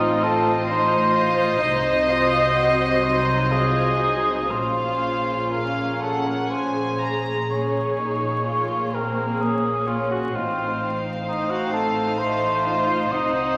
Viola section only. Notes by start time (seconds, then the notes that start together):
Already playing: F4 C5
1.63 F#3
4.52 C#4 G#4
7.51 A#3
10.37 D#4 C5